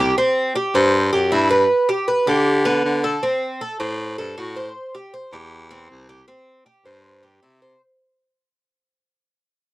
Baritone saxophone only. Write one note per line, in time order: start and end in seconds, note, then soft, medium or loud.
0.00 0.13 C2 medium
0.75 1.10 G2 loud
1.13 1.31 F#2 medium
1.32 1.66 G2 medium
2.27 2.81 D3 loud
2.85 3.18 D3 medium
3.80 4.15 A2 loud
4.18 4.36 G2 medium
4.37 4.71 A2 medium
5.33 5.86 E2 loud
5.90 6.24 C2 medium
6.85 7.38 G2 loud
7.42 7.76 C3 medium